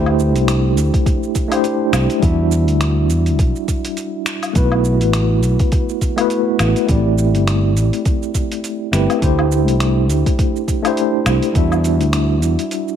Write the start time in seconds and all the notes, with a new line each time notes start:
Already playing: D2 A3 D4 E4 G4 C5
0.06 low woodblock
0.19 shaker
0.35 C2, closed hi-hat, shaker
0.48 finger snap, closed hi-hat, shaker
0.77 D2, closed hi-hat, shaker
0.94 kick, closed hi-hat, shaker
1.06 kick, closed hi-hat, shaker
1.23 shaker
1.35 kick, closed hi-hat, shaker
1.48 A3 D4 E4 G4, closed hi-hat, low woodblock, shaker
1.53 C5
1.64 closed hi-hat, shaker
1.93 C2, finger snap, closed hi-hat, low woodblock, shaker
2.10 closed hi-hat, shaker
2.19 E2 G3 D4 E4 F#4, kick, closed hi-hat, shaker
2.25 E5
2.52 shaker
2.68 D2, closed hi-hat, shaker
2.81 finger snap, closed hi-hat, shaker
3.10 E2, closed hi-hat, shaker
3.26 closed hi-hat, shaker
3.39 B1, kick, closed hi-hat, shaker
3.56 shaker
3.68 kick, closed hi-hat, shaker
3.85 closed hi-hat, shaker
3.97 closed hi-hat, shaker
4.26 finger snap, closed hi-hat, shaker
4.43 closed hi-hat, low woodblock, shaker
4.53 B1 A3 B3 E4 F#4, kick, closed hi-hat, shaker
4.58 B4
4.72 low woodblock
4.84 shaker
5.01 A1, closed hi-hat, shaker
5.13 finger snap, closed hi-hat, shaker
5.43 B1, closed hi-hat, shaker
5.59 kick, closed hi-hat, shaker
5.72 kick, closed hi-hat, shaker
5.89 shaker
6.01 kick, closed hi-hat, shaker
6.16 A3 B3 E4 F#4, closed hi-hat, low woodblock, shaker
6.21 B4
6.30 closed hi-hat, shaker
6.59 A1, finger snap, closed hi-hat, low woodblock, shaker
6.76 closed hi-hat, shaker
6.86 A1 A3 C4 E4, kick, closed hi-hat, shaker
6.90 G4 D5
7.18 shaker
7.35 G1, closed hi-hat, shaker
7.48 finger snap, closed hi-hat, shaker
7.76 A1, closed hi-hat, shaker
7.93 closed hi-hat, shaker
8.05 kick, closed hi-hat, shaker
8.23 shaker
8.34 kick, closed hi-hat, shaker
8.52 closed hi-hat, shaker
8.64 closed hi-hat, shaker
8.92 G1 A3 C4 E4 G4 B4, finger snap, closed hi-hat, shaker
9.10 closed hi-hat, low woodblock, shaker
9.19 D2 A3 D4 E4 G4, kick, closed hi-hat, shaker
9.24 C5
9.39 low woodblock
9.52 shaker
9.68 C2, closed hi-hat, shaker
9.80 finger snap, closed hi-hat, shaker
10.10 D2, closed hi-hat, shaker
10.26 kick, closed hi-hat, shaker
10.39 kick, closed hi-hat, shaker
10.56 shaker
10.68 kick, closed hi-hat, shaker
10.82 A3 D4 E4 G4, closed hi-hat, low woodblock, shaker
10.87 C5
10.97 closed hi-hat, shaker
11.26 C2, finger snap, closed hi-hat, low woodblock, shaker
11.43 closed hi-hat, shaker
11.52 E2 G3 D4 E4 F#4, kick, closed hi-hat, shaker
11.57 E5
11.72 low woodblock, shaker
11.84 closed hi-hat, shaker
12.01 D2, closed hi-hat, shaker
12.13 finger snap, closed hi-hat, shaker
12.42 E2, closed hi-hat, shaker
12.59 closed hi-hat, shaker
12.71 closed hi-hat, shaker
12.88 shaker